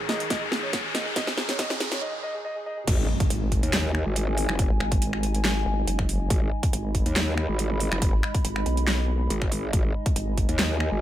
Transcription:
Already playing: G#2 D#3 D#4 G#4, riser
0.09 D#5, snare, closed hi-hat
0.20 G#4, closed hi-hat
0.30 D#5, kick, snare, closed hi-hat
0.42 G#4
0.52 G#4, snare
0.63 C#5
0.73 G#4, kick, snare, closed hi-hat
0.84 G#4
0.95 D#5, snare, open hi-hat
1.06 G#4
1.16 D#5, kick, snare, closed hi-hat
1.27 G#4, snare
1.37 G#4, snare
1.49 C#5, snare, closed hi-hat
1.59 D#5, kick, snare, closed hi-hat
1.70 G#4, snare
1.80 G#4, snare, closed hi-hat
1.92 C#5, snare, closed hi-hat
2.02 D#5
2.13 G#4
2.23 D#5
2.34 G#4
2.45 D#5
2.56 G#4
2.66 D#5
2.77 G#4
2.87 G#1 G#3 D#4 D#5 G#5, kick, closed hi-hat, crash, impact
3.20 kick, closed hi-hat
3.30 G#1, closed hi-hat
3.52 kick, closed hi-hat
3.63 D#2, closed hi-hat
3.73 snare, clap, closed hi-hat
3.95 finger snap
4.06 G#1
4.16 closed hi-hat
4.38 open hi-hat
4.49 F#1, finger snap
4.59 kick, closed hi-hat
4.70 G#1
4.80 G#1, finger snap
4.92 kick, closed hi-hat
5.02 closed hi-hat
5.13 finger snap
5.23 closed hi-hat
5.35 closed hi-hat
5.45 snare, clap, closed hi-hat
5.66 G#1
5.87 F#1, closed hi-hat
5.99 finger snap, kick
6.09 open hi-hat
6.30 G#1 B5, kick, closed hi-hat
6.63 kick, closed hi-hat
6.73 G#1, closed hi-hat
6.95 kick, closed hi-hat
7.06 D#2, closed hi-hat
7.16 snare, clap, closed hi-hat
7.38 finger snap
7.49 G#1
7.59 closed hi-hat
7.80 open hi-hat
7.92 F#1, finger snap
8.02 kick, closed hi-hat
8.13 G#1
8.23 finger snap
8.35 kick, closed hi-hat
8.45 G#1, closed hi-hat
8.56 finger snap
8.66 B1, closed hi-hat
8.77 closed hi-hat
8.87 snare, clap, closed hi-hat
9.30 G#1, closed hi-hat
9.42 finger snap, kick
9.52 open hi-hat
9.73 G#1 G#5, kick, closed hi-hat
10.06 kick, closed hi-hat
10.16 G#1, closed hi-hat
10.38 kick, closed hi-hat
10.49 D#2, closed hi-hat
10.59 snare, clap, closed hi-hat
10.80 finger snap
10.92 G#1

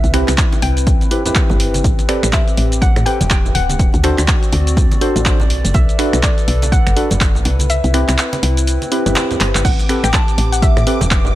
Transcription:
Already playing: C4 E4 B4 E5
0.04 C2, closed hi-hat, high conga, shaker
0.14 C4 E4 G4 B4, finger snap, open hi-hat, muted conga
0.28 C2, finger snap, clap, closed hi-hat, shaker
0.38 kick, clap, closed hi-hat, shaker
0.52 closed hi-hat, muted conga, shaker
0.62 C2 G5, open hi-hat
0.77 closed hi-hat, shaker
0.87 kick, closed hi-hat, shaker
1.01 closed hi-hat, muted conga, shaker
1.11 C4 E4 G4 B4, open hi-hat
1.25 C4 E4 G4 B4, closed hi-hat, low conga, shaker
1.35 kick, clap, closed hi-hat, muted conga, shaker
1.50 G1, low conga, shaker
1.60 open hi-hat
1.74 closed hi-hat, high conga, shaker
1.84 A1 G4, kick, closed hi-hat, shaker
1.99 closed hi-hat, muted conga, shaker
2.09 C4 G4 A4 B4 D5, finger snap, open hi-hat
2.23 A1, finger snap, closed hi-hat, shaker
2.33 E5, kick, clap, closed hi-hat, muted conga, shaker
2.48 closed hi-hat, shaker
2.57 A1, open hi-hat
2.72 closed hi-hat, shaker
2.82 F#5, kick, closed hi-hat, muted conga, high conga, shaker
2.96 A2, finger snap, closed hi-hat, shaker
3.06 C4 G4 A4 B4 G5, open hi-hat
3.21 E1, closed hi-hat, muted conga, low conga, shaker
3.30 G5, kick, clap, closed hi-hat, shaker
3.46 low conga, shaker
3.55 D1 F#5, open hi-hat
3.69 closed hi-hat, muted conga, high conga, shaker
3.79 C4 F#4 D5, kick, closed hi-hat, shaker
3.93 D2, closed hi-hat, high conga, shaker
4.04 D4 F#4 A4 C5, finger snap, open hi-hat, muted conga
4.18 D2, finger snap, clap, closed hi-hat, shaker
4.28 kick, clap, closed hi-hat, shaker
4.43 closed hi-hat, shaker
4.52 D2, open hi-hat, muted conga
4.67 closed hi-hat, shaker
4.77 kick, closed hi-hat, shaker
4.91 closed hi-hat, muted conga, shaker
5.01 D4 F#4 A4 C5, open hi-hat
5.16 A1, closed hi-hat, low conga, shaker
5.25 D4 F#4 A4 C5, kick, clap, closed hi-hat, shaker
5.40 muted conga, low conga, shaker
5.50 B1 A4 B4, open hi-hat
5.65 F#1, closed hi-hat, high conga, shaker
5.74 B1 E5, kick, closed hi-hat, muted conga, shaker
5.89 closed hi-hat, shaker
5.99 D4 F#4 A4 B4, finger snap, open hi-hat
6.13 B1, finger snap, closed hi-hat, shaker
6.23 D5, kick, clap, closed hi-hat, muted conga, shaker
6.38 closed hi-hat, shaker
6.48 B1, open hi-hat
6.62 closed hi-hat, muted conga, shaker
6.72 F#5, kick, closed hi-hat, high conga, shaker
6.87 F#1, finger snap, closed hi-hat, shaker
6.96 D4 F#4 A4 B4, open hi-hat
7.11 F#1, closed hi-hat, muted conga, low conga, shaker
7.21 kick, clap, closed hi-hat, shaker
7.35 low conga, shaker
7.45 C2 C4 E4, open hi-hat, muted conga
7.59 closed hi-hat, high conga, shaker
7.70 E5, closed hi-hat, shaker
7.84 C2, closed hi-hat, high conga, shaker
7.94 C4 E4 G4 B4, finger snap, open hi-hat, muted conga
8.08 C2, finger snap, clap, closed hi-hat, shaker
8.18 clap, closed hi-hat, shaker
8.33 closed hi-hat, muted conga, shaker
8.43 C2, open hi-hat
8.57 closed hi-hat, shaker
8.67 closed hi-hat, shaker
8.82 closed hi-hat, muted conga, shaker
8.92 C4 E4 G4 B4, open hi-hat
9.06 G1 C4 E4 G4 B4, closed hi-hat, low conga, shaker
9.15 clap, closed hi-hat, muted conga, shaker
9.31 closed hi-hat, low conga, shaker
9.40 G1, clap, open hi-hat
9.55 G1, clap, closed hi-hat, high conga, shaker
9.65 A1 G4 F#5 D6, kick, closed hi-hat, crash, shaker
9.79 closed hi-hat, muted conga, shaker
9.89 C4 G4 A4 B4, finger snap, open hi-hat
10.03 A1 G5, finger snap, closed hi-hat, shaker
10.13 A5, kick, clap, closed hi-hat, muted conga, shaker
10.28 closed hi-hat, shaker
10.38 A1, open hi-hat
10.52 F#5, closed hi-hat, shaker
10.62 E5, kick, closed hi-hat, muted conga, high conga, shaker
10.77 A2, finger snap, closed hi-hat, shaker
10.87 C4 G4 A4 B4, open hi-hat
11.01 E1, closed hi-hat, muted conga, low conga, shaker
11.11 kick, clap, closed hi-hat, shaker
11.25 low conga, shaker

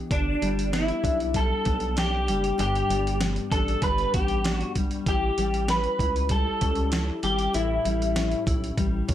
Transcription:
Already playing: E3 B3 D4 G4
0.11 G1 D4, kick, closed hi-hat
0.42 G1 G3, closed hi-hat
0.59 closed hi-hat
0.72 B3 E4, snare, closed hi-hat
0.88 closed hi-hat
1.03 B1 D4, kick, closed hi-hat
1.20 closed hi-hat
1.34 G3 A4, kick, closed hi-hat
1.65 B1 B3, kick, closed hi-hat
1.80 closed hi-hat
1.96 D4 G4, snare, closed hi-hat
2.27 F#1 G3, closed hi-hat
2.44 closed hi-hat
2.58 G1 G2 D4 G4, closed hi-hat
2.75 closed hi-hat
2.89 G1 G3, closed hi-hat
3.07 closed hi-hat
3.21 B3, snare, closed hi-hat
3.36 closed hi-hat
3.52 A1 D4 A4, kick, snare, closed hi-hat
3.68 closed hi-hat
3.82 G1 G3 B4, kick, closed hi-hat
3.98 closed hi-hat
4.14 A1 B3 G4, kick, closed hi-hat
4.28 closed hi-hat
4.44 D4, snare, closed hi-hat
4.55 F#4
4.61 closed hi-hat
4.75 G3, kick, closed hi-hat
4.91 closed hi-hat
5.06 A1 E4 G4, kick, closed hi-hat
5.38 A1 G3, closed hi-hat
5.54 closed hi-hat
5.68 C#4 B4, snare, closed hi-hat
5.84 closed hi-hat
5.99 C#2 E4, kick, closed hi-hat
6.16 closed hi-hat
6.29 G3 A4, kick, closed hi-hat
6.61 C#2 C#4, kick, closed hi-hat
6.75 closed hi-hat
6.91 E4, snare, closed hi-hat
7.23 G#1 G3 G4, closed hi-hat
7.39 closed hi-hat
7.53 A1 A2 E4, closed hi-hat
7.84 A1 G3, closed hi-hat
8.02 closed hi-hat
8.15 C#4, snare, closed hi-hat
8.31 closed hi-hat
8.46 B1 E4, kick, closed hi-hat
8.64 closed hi-hat
8.77 A1 G3, kick, closed hi-hat
9.08 C#2 C#4, kick, closed hi-hat

